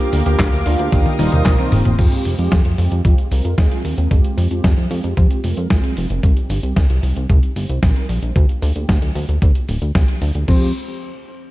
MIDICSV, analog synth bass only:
0, 0, Header, 1, 2, 480
1, 0, Start_track
1, 0, Tempo, 530973
1, 1796, Time_signature, 4, 2, 24, 8
1, 10404, End_track
2, 0, Start_track
2, 0, Title_t, "Analog synth bass"
2, 0, Program_c, 0, 38
2, 116, Note_on_c, 0, 38, 93
2, 205, Note_off_c, 0, 38, 0
2, 236, Note_on_c, 0, 38, 85
2, 325, Note_off_c, 0, 38, 0
2, 356, Note_on_c, 0, 38, 104
2, 445, Note_off_c, 0, 38, 0
2, 476, Note_on_c, 0, 38, 75
2, 565, Note_off_c, 0, 38, 0
2, 597, Note_on_c, 0, 38, 98
2, 686, Note_off_c, 0, 38, 0
2, 717, Note_on_c, 0, 38, 88
2, 806, Note_off_c, 0, 38, 0
2, 835, Note_on_c, 0, 39, 108
2, 925, Note_off_c, 0, 39, 0
2, 1077, Note_on_c, 0, 27, 95
2, 1166, Note_off_c, 0, 27, 0
2, 1197, Note_on_c, 0, 39, 85
2, 1286, Note_off_c, 0, 39, 0
2, 1316, Note_on_c, 0, 34, 104
2, 1405, Note_off_c, 0, 34, 0
2, 1557, Note_on_c, 0, 27, 94
2, 1646, Note_off_c, 0, 27, 0
2, 1677, Note_on_c, 0, 27, 82
2, 1766, Note_off_c, 0, 27, 0
2, 1795, Note_on_c, 0, 41, 96
2, 1885, Note_off_c, 0, 41, 0
2, 2036, Note_on_c, 0, 29, 88
2, 2125, Note_off_c, 0, 29, 0
2, 2157, Note_on_c, 0, 41, 81
2, 2246, Note_off_c, 0, 41, 0
2, 2276, Note_on_c, 0, 41, 102
2, 2365, Note_off_c, 0, 41, 0
2, 2396, Note_on_c, 0, 41, 79
2, 2485, Note_off_c, 0, 41, 0
2, 2516, Note_on_c, 0, 41, 97
2, 2605, Note_off_c, 0, 41, 0
2, 2636, Note_on_c, 0, 41, 85
2, 2725, Note_off_c, 0, 41, 0
2, 2755, Note_on_c, 0, 41, 102
2, 2845, Note_off_c, 0, 41, 0
2, 2996, Note_on_c, 0, 36, 93
2, 3086, Note_off_c, 0, 36, 0
2, 3116, Note_on_c, 0, 41, 79
2, 3205, Note_off_c, 0, 41, 0
2, 3236, Note_on_c, 0, 39, 106
2, 3325, Note_off_c, 0, 39, 0
2, 3475, Note_on_c, 0, 39, 90
2, 3565, Note_off_c, 0, 39, 0
2, 3595, Note_on_c, 0, 39, 84
2, 3685, Note_off_c, 0, 39, 0
2, 3716, Note_on_c, 0, 41, 97
2, 3805, Note_off_c, 0, 41, 0
2, 3955, Note_on_c, 0, 41, 94
2, 4045, Note_off_c, 0, 41, 0
2, 4075, Note_on_c, 0, 41, 84
2, 4165, Note_off_c, 0, 41, 0
2, 4196, Note_on_c, 0, 41, 99
2, 4285, Note_off_c, 0, 41, 0
2, 4315, Note_on_c, 0, 41, 75
2, 4405, Note_off_c, 0, 41, 0
2, 4436, Note_on_c, 0, 41, 100
2, 4525, Note_off_c, 0, 41, 0
2, 4557, Note_on_c, 0, 41, 86
2, 4646, Note_off_c, 0, 41, 0
2, 4676, Note_on_c, 0, 41, 104
2, 4765, Note_off_c, 0, 41, 0
2, 4916, Note_on_c, 0, 29, 94
2, 5005, Note_off_c, 0, 29, 0
2, 5036, Note_on_c, 0, 41, 82
2, 5125, Note_off_c, 0, 41, 0
2, 5156, Note_on_c, 0, 36, 100
2, 5245, Note_off_c, 0, 36, 0
2, 5396, Note_on_c, 0, 29, 92
2, 5485, Note_off_c, 0, 29, 0
2, 5516, Note_on_c, 0, 29, 87
2, 5605, Note_off_c, 0, 29, 0
2, 5636, Note_on_c, 0, 36, 97
2, 5725, Note_off_c, 0, 36, 0
2, 5875, Note_on_c, 0, 31, 94
2, 5965, Note_off_c, 0, 31, 0
2, 5995, Note_on_c, 0, 36, 82
2, 6085, Note_off_c, 0, 36, 0
2, 6115, Note_on_c, 0, 36, 100
2, 6205, Note_off_c, 0, 36, 0
2, 6237, Note_on_c, 0, 36, 80
2, 6326, Note_off_c, 0, 36, 0
2, 6354, Note_on_c, 0, 36, 96
2, 6445, Note_off_c, 0, 36, 0
2, 6476, Note_on_c, 0, 36, 88
2, 6565, Note_off_c, 0, 36, 0
2, 6595, Note_on_c, 0, 36, 106
2, 6685, Note_off_c, 0, 36, 0
2, 6836, Note_on_c, 0, 31, 90
2, 6925, Note_off_c, 0, 31, 0
2, 6955, Note_on_c, 0, 36, 83
2, 7045, Note_off_c, 0, 36, 0
2, 7075, Note_on_c, 0, 34, 101
2, 7165, Note_off_c, 0, 34, 0
2, 7314, Note_on_c, 0, 34, 91
2, 7404, Note_off_c, 0, 34, 0
2, 7435, Note_on_c, 0, 34, 83
2, 7525, Note_off_c, 0, 34, 0
2, 7555, Note_on_c, 0, 38, 97
2, 7645, Note_off_c, 0, 38, 0
2, 7795, Note_on_c, 0, 38, 95
2, 7885, Note_off_c, 0, 38, 0
2, 7916, Note_on_c, 0, 38, 83
2, 8005, Note_off_c, 0, 38, 0
2, 8035, Note_on_c, 0, 38, 103
2, 8125, Note_off_c, 0, 38, 0
2, 8155, Note_on_c, 0, 38, 79
2, 8245, Note_off_c, 0, 38, 0
2, 8275, Note_on_c, 0, 38, 100
2, 8365, Note_off_c, 0, 38, 0
2, 8395, Note_on_c, 0, 38, 82
2, 8485, Note_off_c, 0, 38, 0
2, 8516, Note_on_c, 0, 38, 105
2, 8605, Note_off_c, 0, 38, 0
2, 8755, Note_on_c, 0, 26, 94
2, 8845, Note_off_c, 0, 26, 0
2, 8875, Note_on_c, 0, 38, 80
2, 8965, Note_off_c, 0, 38, 0
2, 8995, Note_on_c, 0, 36, 102
2, 9085, Note_off_c, 0, 36, 0
2, 9236, Note_on_c, 0, 38, 93
2, 9325, Note_off_c, 0, 38, 0
2, 9356, Note_on_c, 0, 38, 83
2, 9445, Note_off_c, 0, 38, 0
2, 9475, Note_on_c, 0, 41, 90
2, 9699, Note_off_c, 0, 41, 0
2, 10404, End_track
0, 0, End_of_file